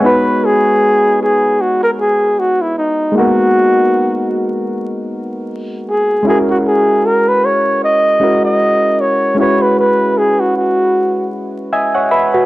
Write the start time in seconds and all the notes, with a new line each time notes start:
Already playing: C#5 F#5
0.00 G#3 B3 D#4
0.06 F#4 B4
0.45 G#4
1.22 G#4
1.61 F#4
1.83 A#4
2.00 G#4
2.39 F#4
2.61 E4
2.78 D#4
3.12 G#3 A#3 D#4
3.17 B3 F#4 A#4
5.89 G#4
6.23 G#3 C#4 E4
6.29 F#4 G#4 A#4
6.50 F#4
6.67 G#4
7.06 A#4
7.28 B4
7.45 C#5
7.84 D#5
8.20 G#3 C#4 E4 F#4 A#4
8.45 D#5
9.00 C#5
9.35 G#3 C#4 E4
9.40 F#4 B4 C#5
9.62 B4
9.79 B4
10.18 G#4
10.40 F#4
10.57 F#4
11.73 D#5 E5 G#5
11.95 C#5 F#5
12.11 B4 E5 B5
12.34 F#4 B4